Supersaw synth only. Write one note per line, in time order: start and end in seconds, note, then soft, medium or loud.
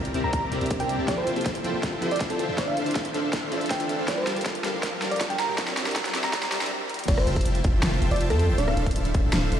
0.14 0.22 C4 medium
0.14 0.22 G4 medium
0.14 0.22 D5 medium
0.14 0.22 E5 medium
0.14 0.22 A#5 loud
0.24 0.31 C4 medium
0.24 0.31 G4 medium
0.24 0.31 D5 medium
0.24 0.31 E5 medium
0.24 0.31 A#5 medium
0.33 0.50 C4 medium
0.33 0.50 G4 medium
0.33 0.50 D5 medium
0.33 0.50 E5 medium
0.33 0.50 A#5 medium
0.52 0.59 C4 loud
0.52 0.59 G4 medium
0.52 0.59 D5 medium
0.52 0.59 E5 medium
0.52 0.59 A#5 loud
0.61 0.78 C4 loud
0.61 0.78 G4 medium
0.61 0.78 D5 medium
0.61 0.78 E5 medium
0.61 0.78 A#5 loud
0.80 0.96 C4 medium
0.80 0.96 G4 medium
0.80 0.96 D5 medium
0.80 0.96 E5 medium
0.80 0.96 A#5 loud
0.99 1.06 C4 medium
0.99 1.06 G4 medium
0.99 1.06 D5 medium
0.99 1.06 E5 medium
0.99 1.06 A5 loud
1.08 1.25 F4 medium
1.08 1.25 C5 medium
1.08 1.25 E5 medium
1.08 1.25 G5 medium
1.08 1.25 A5 loud
1.27 1.43 F4 medium
1.27 1.44 C5 medium
1.27 1.43 E5 medium
1.27 1.43 G5 medium
1.27 1.43 A5 medium
1.46 1.57 F4 medium
1.46 1.57 C5 medium
1.46 1.57 E5 medium
1.46 1.57 G5 medium
1.46 1.57 A5 loud
1.64 1.72 F4 medium
1.64 1.72 C5 medium
1.64 1.72 E5 medium
1.64 1.72 G5 medium
1.64 1.72 A5 medium
1.74 1.81 F4 medium
1.74 1.81 C5 medium
1.74 1.81 E5 medium
1.74 1.81 G5 medium
1.74 1.81 A5 medium
1.83 2.00 F4 medium
1.83 2.00 C5 medium
1.83 2.00 E5 medium
1.83 2.00 G5 medium
1.83 2.00 A5 loud
2.02 2.28 F4 medium
2.02 2.28 C5 medium
2.02 2.28 E5 medium
2.02 2.28 G5 medium
2.02 2.28 C6 medium
2.30 2.47 F4 medium
2.30 2.47 C5 medium
2.30 2.47 E5 medium
2.30 2.47 G5 medium
2.30 2.47 A5 medium
2.49 2.56 F4 medium
2.49 2.56 C5 medium
2.49 2.56 E5 medium
2.49 2.56 G5 medium
2.49 2.56 A5 loud
2.58 2.75 D4 medium
2.58 2.75 A4 medium
2.58 2.75 C5 medium
2.58 2.75 E5 medium
2.58 2.75 F5 loud
2.77 2.94 D4 medium
2.77 2.94 A4 medium
2.77 2.94 C5 medium
2.77 2.94 E5 medium
2.77 2.94 F5 medium
2.96 3.07 D4 medium
2.96 3.07 A4 medium
2.96 3.07 C5 medium
2.96 3.07 E5 medium
2.96 3.07 F5 loud
3.14 3.22 D4 medium
3.14 3.22 A4 medium
3.14 3.22 C5 medium
3.14 3.22 E5 medium
3.14 3.22 F5 loud
3.24 3.31 D4 medium
3.24 3.31 A4 medium
3.24 3.31 C5 medium
3.24 3.31 E5 medium
3.24 3.31 F5 medium
3.33 3.50 D4 medium
3.33 3.50 A4 medium
3.33 3.50 C5 medium
3.33 3.50 E5 medium
3.33 3.50 F5 medium
3.52 3.78 D4 medium
3.52 3.78 A4 medium
3.52 3.78 C5 medium
3.52 3.78 E5 medium
3.52 3.78 F5 medium
3.80 3.97 D4 medium
3.80 3.97 A4 medium
3.80 3.97 C5 medium
3.80 3.97 E5 medium
3.80 3.97 F5 loud
3.99 4.06 D4 medium
3.99 4.06 A4 medium
3.99 4.06 C5 medium
3.99 4.06 E5 medium
3.99 4.06 F5 medium
4.08 4.25 G3 medium
4.08 4.25 G4 medium
4.08 4.25 A#4 medium
4.08 4.25 F5 medium
4.08 4.25 A5 loud
4.27 4.44 G3 medium
4.27 4.44 G4 medium
4.27 4.44 A#4 medium
4.27 4.44 F5 medium
4.27 4.44 A5 loud
4.46 4.57 G3 medium
4.46 4.57 G4 medium
4.46 4.57 A#4 medium
4.46 4.57 F5 medium
4.46 4.57 A5 loud
4.64 4.72 G3 medium
4.64 4.72 G4 medium
4.64 4.72 A#4 medium
4.64 4.72 F5 medium
4.64 4.72 A5 loud
4.74 4.81 G3 medium
4.74 4.81 G4 medium
4.74 4.81 A#4 medium
4.74 4.81 F5 medium
4.74 4.81 C6 medium
4.83 5.00 G3 medium
4.83 5.00 G4 medium
4.83 5.00 A#4 medium
4.83 5.00 F5 medium
4.83 5.00 A5 medium
5.02 5.28 G3 medium
5.02 5.28 G4 medium
5.02 5.28 A#4 medium
5.02 5.28 F5 medium
5.02 5.28 A#5 medium
5.30 5.47 G3 medium
5.30 5.47 G4 medium
5.30 5.47 A#4 medium
5.30 5.47 F5 medium
5.30 5.47 A5 loud
5.49 5.56 G3 medium
5.49 5.56 G4 medium
5.49 5.56 A#4 medium
5.49 5.56 F5 medium
5.49 5.56 G5 loud
5.58 5.75 C4 medium
5.58 5.75 G4 medium
5.58 5.75 D5 medium
5.58 5.75 E5 medium
5.58 5.75 A#5 loud
5.77 5.93 C4 medium
5.77 5.93 G4 medium
5.77 5.93 D5 medium
5.77 5.93 E5 medium
5.77 5.93 A#5 loud
5.96 6.07 C4 medium
5.96 6.07 G4 medium
5.96 6.07 D5 medium
5.96 6.07 E5 medium
5.96 6.07 A#5 medium
6.14 6.22 C4 medium
6.14 6.22 G4 medium
6.14 6.22 D5 medium
6.14 6.22 E5 medium
6.14 6.22 A#5 loud
6.24 6.31 C4 medium
6.24 6.31 G4 medium
6.24 6.31 D5 medium
6.24 6.31 E5 medium
6.24 6.31 A#5 medium
6.33 6.50 C4 medium
6.33 6.50 G4 medium
6.33 6.50 D5 medium
6.33 6.50 E5 medium
6.33 6.50 A#5 loud
6.52 6.59 C4 loud
6.52 6.59 G4 medium
6.52 6.59 D5 medium
6.52 6.59 E5 medium
6.52 6.59 A#5 loud
6.61 6.71 C4 loud
6.61 6.71 G4 medium
6.61 6.71 D5 medium
6.61 6.71 E5 medium
6.61 6.71 A#5 loud
7.08 7.25 F4 medium
7.08 7.25 C5 medium
7.08 7.25 E5 medium
7.08 7.25 G5 medium
7.08 7.25 A5 loud
7.27 7.44 F4 medium
7.27 7.44 C5 medium
7.27 7.44 E5 medium
7.27 7.44 G5 medium
7.27 7.44 A5 medium
7.46 7.57 F4 medium
7.46 7.57 C5 medium
7.46 7.57 E5 medium
7.46 7.57 G5 medium
7.46 7.57 A5 loud
7.64 7.72 F4 medium
7.64 7.72 C5 medium
7.64 7.72 E5 medium
7.64 7.72 G5 medium
7.64 7.72 A5 loud
7.74 7.81 F4 medium
7.74 7.81 C5 medium
7.74 7.81 E5 medium
7.74 7.81 G5 medium
7.74 7.81 A5 medium
7.83 8.00 F4 medium
7.83 8.00 C5 medium
7.83 8.00 E5 medium
7.83 8.00 G5 medium
7.83 8.00 A5 medium
8.02 8.09 F4 loud
8.02 8.09 C5 medium
8.02 8.09 E5 medium
8.02 8.09 G5 medium
8.02 8.09 A5 loud
8.11 8.28 F4 loud
8.11 8.28 C5 medium
8.11 8.28 E5 medium
8.11 8.28 G5 medium
8.11 8.28 A5 loud
8.30 8.46 F4 medium
8.30 8.46 C5 medium
8.30 8.46 E5 medium
8.30 8.46 G5 medium
8.30 8.46 A5 loud
8.49 8.56 F4 medium
8.49 8.56 C5 medium
8.49 8.56 E5 medium
8.49 8.56 G5 medium
8.49 8.56 A5 loud
8.58 8.75 D4 medium
8.58 8.75 A4 medium
8.58 8.75 C5 medium
8.58 8.75 E5 medium
8.58 8.75 F5 loud
8.77 8.94 D4 medium
8.77 8.94 A4 medium
8.77 8.94 C5 medium
8.77 8.94 E5 medium
8.77 8.94 F5 loud
8.96 9.07 D4 medium
8.96 9.07 A4 medium
8.96 9.07 C5 medium
8.96 9.07 E5 medium
8.96 9.07 F5 loud
9.14 9.22 D4 medium
9.14 9.22 A4 medium
9.14 9.22 C5 medium
9.14 9.22 E5 medium
9.14 9.22 F5 loud
9.24 9.31 D4 medium
9.24 9.31 A4 medium
9.24 9.31 C5 medium
9.24 9.31 E5 medium
9.24 9.31 F5 medium
9.33 9.50 D4 medium
9.33 9.50 A4 medium
9.33 9.50 C5 medium
9.33 9.50 E5 medium
9.33 9.50 F5 loud
9.52 9.59 D4 loud
9.52 9.59 A4 medium
9.52 9.59 C5 medium
9.52 9.59 E5 medium
9.52 9.59 F5 loud